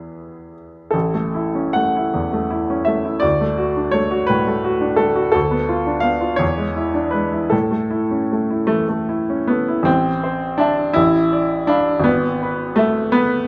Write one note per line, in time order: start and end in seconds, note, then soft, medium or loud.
0.00 0.88 E2 soft
0.00 0.89 B3 soft
0.00 0.90 E4 soft
0.00 0.53 G#4 medium
0.91 3.21 A1 soft
0.91 1.76 A4 medium
1.14 1.48 A3 soft
1.34 1.68 E4 soft
1.55 1.88 C#4 soft
1.73 2.08 A3 soft
1.73 2.87 F#5 medium
1.96 2.27 E4 soft
2.14 2.44 E2 soft
2.33 2.63 A3 soft
2.51 2.80 E4 soft
2.70 2.99 C#4 soft
2.85 3.17 A3 soft
2.85 3.22 E5 medium
3.05 3.24 E4 soft
3.20 5.30 D2 soft
3.20 3.93 D5 medium
3.41 3.70 A3 soft
3.58 3.87 F#4 soft
3.77 4.05 D4 soft
3.91 4.22 A3 soft
3.91 4.28 C#5 medium
4.11 4.40 F#4 soft
4.27 4.58 A2 soft
4.27 4.98 B4 medium
4.47 4.75 A3 soft
4.65 4.93 F#4 soft
4.81 5.10 D4 soft
4.96 5.27 A3 soft
4.96 5.30 A4 medium
5.16 5.34 F#4 soft
5.32 6.38 D2 soft
5.32 6.04 A4 medium
5.51 5.80 B3 soft
5.69 5.98 F4 soft
5.86 6.16 D4 soft
6.00 6.33 B3 soft
6.00 6.39 F5 medium
6.21 6.40 F4 soft
6.36 7.48 E2 soft
6.36 7.12 C#5 medium
6.58 6.88 G#3 soft
6.76 7.06 E4 soft
6.94 7.25 D4 soft
7.11 7.44 G#3 soft
7.11 7.51 B4 soft
7.32 7.52 E4 soft
7.50 9.82 A2 soft
7.50 8.68 A4 medium
7.71 8.03 A3 soft
7.91 8.23 E4 soft
8.11 8.42 C#4 soft
8.32 8.63 A3 soft
8.50 8.81 E4 soft
8.67 9.01 E3 soft
8.67 8.87 A3 medium
8.89 9.20 A3 soft
9.09 9.40 E4 soft
9.30 9.60 C#4 soft
9.47 9.80 A3 soft
9.47 9.86 B3 medium
9.68 9.87 E4 soft
9.83 10.91 A1 soft
9.83 10.59 C4 medium
10.24 10.81 C5 soft
10.58 10.95 D4 medium
10.58 10.92 E5 soft
10.58 10.93 A5 soft
10.93 12.03 A1 medium
10.93 11.68 E4 medium
11.32 11.91 D5 soft
11.67 12.05 D4 medium
11.67 12.02 F5 soft
11.67 12.02 B5 soft
12.00 13.47 G#1 medium
12.04 12.77 B3 medium
12.43 13.00 B4 soft
12.76 13.13 A3 medium
12.76 13.36 E5 soft
13.12 13.47 B3 medium
13.12 13.47 B4 soft